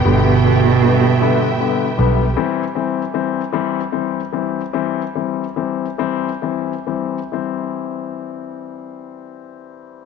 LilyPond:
<<
  \new Staff \with { instrumentName = "String section" } { \time 6/8 \key c \major \tempo 4. = 49 <b g' e'' g''>2. | r2. | r2. | r2. | }
  \new Staff \with { instrumentName = "Grand piano" } { \clef bass \time 6/8 \key c \major <d g b>8 <d g b>8 <d g b>8 <d g b>8 <d g b>8 <d g b>8 | <e g c'>8 <e g c'>8 <e g c'>8 <e g c'>8 <e g c'>8 <e g c'>8 | <e g c'>8 <e g c'>8 <e g c'>8 <e g c'>8 <e g c'>8 <e g c'>8 | <e g c'>2. | }
  \new Staff \with { instrumentName = "Cello" } { \clef bass \time 6/8 \key c \major b,2~ b,8 r8 | r2. | r2. | r2. | }
  \new Staff \with { instrumentName = "Fingered electric bass" } { \clef bass \time 6/8 \key c \major g,,2~ g,,8 b,,8 | r2. | r2. | r2. | }
>>